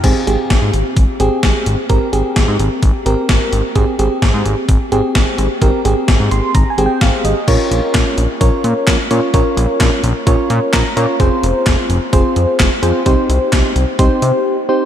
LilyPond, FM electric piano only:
\new Staff \with { instrumentName = "FM electric piano" } { \time 4/4 \key aes \major \tempo 4 = 129 << { r1 | r1 | r1 | r4. c'''8 \tuplet 3/2 { bes''8 aes''8 g''8 } f''8 ees''8 |
r1 | r2. bes''4 | r1 | r1 | } \\ { <c' g' aes'>8 <c' g' aes'>4. r8 <c' g' aes'>4~ <c' g' aes'>16 r16 | <c' g' bes'>8 <c' g' aes'>4. r8 <c' g' bes'>4~ <c' g' bes'>16 r16 | <c' g' aes'>8 <c' g' aes'>4. r8 <c' g' aes'>4~ <c' g' aes'>16 r16 | <c' g' bes'>8 <c' g' aes'>4. r8 <c' g' aes'>4~ <c' g' aes'>16 r16 |
<des' f' bes' des''>4. r8 <des' f' bes' des''>4~ <des' f' bes' des''>16 r16 <des' f' bes' des''>8 | <des' f' bes' des''>4. r8 <des' f' bes' des''>4~ <des' f' bes' des''>16 r16 <des' f' bes' des''>8 | <c' f' aes' c''>4. r8 <c' f' aes' c''>4~ <c' f' aes' c''>16 r16 <c' f' aes' c''>8 | <c' ees' g' c''>4. r8 <c' ees' g' c''>4~ <c' ees' g' c''>16 r16 <c' ees' g' c''>8 | } >> }